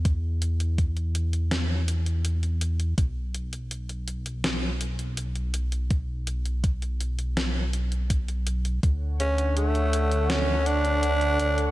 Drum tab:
HH |x-xxxxxxx-xxxxxx|x-xxxxxxx-xxxxxx|x-xxxxxxx-xxxxxx|x-xxxxxxx-xxxxxx|
SD |--------o-------|--------o-------|--------o-------|--------o-------|
BD |o---o-----------|o---------------|o---o-------o---|o---------------|